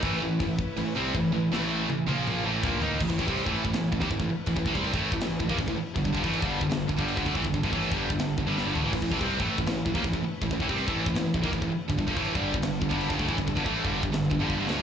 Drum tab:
CC |x---x---x---x---|----------------|x---x---x---x---|x---x---x---x---|
SD |----------------|o---------------|--------o-------|--------o-------|
T1 |----------------|----o-o---------|----------------|----------------|
T2 |----------------|--------o-------|----------------|----------------|
FT |----------------|------------o-o-|----------------|----------------|
BD |o---o-o-----o---|------------o---|oooo-o-o--oooo--|oooo-o-o--oooo--|

CC |x---x---x---x---|x---x---x-------|x---x---x---x---|x---x---x---x---|
SD |--------o-------|--------o---o---|--------o-------|--------o-------|
T1 |----------------|----------------|----------------|----------------|
T2 |----------------|----------------|----------------|----------------|
FT |----------------|--------------o-|----------------|----------------|
BD |oooo-o-o--oo-ooo|oooo-o-o--o-----|oooo-o-o--oooo--|oooo-o-o--oooo--|

CC |x---x---x---x---|x---x---x-------|
SD |--------o-------|--------o-----o-|
T1 |----------------|----------------|
T2 |----------------|----------------|
FT |----------------|----------------|
BD |oooo-o-o--oo-ooo|oooo-o-o--o-o---|